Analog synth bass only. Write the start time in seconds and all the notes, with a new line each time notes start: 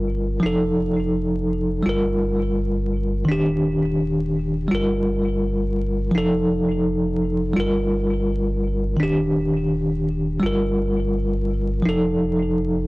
Already playing: G1
0.43 F1
1.86 G1
3.28 D#1
4.72 G1
6.14 F1
7.57 G1
9.00 D#1
10.43 G1
11.86 F1